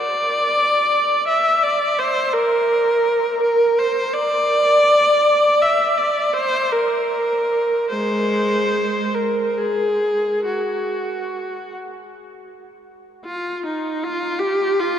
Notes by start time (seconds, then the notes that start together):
Already playing: D5
1.27 E5
1.63 D5
1.99 C5
2.33 A#4
3.42 A#4
3.79 C5
4.14 D5
5.61 E5
5.97 D5
6.33 C5
6.71 A#4
7.90 G#3 C5
9.14 A#4
9.57 G#4
10.47 F#4
13.25 F4
13.66 D#4
14.03 F4
14.39 G4
14.79 F4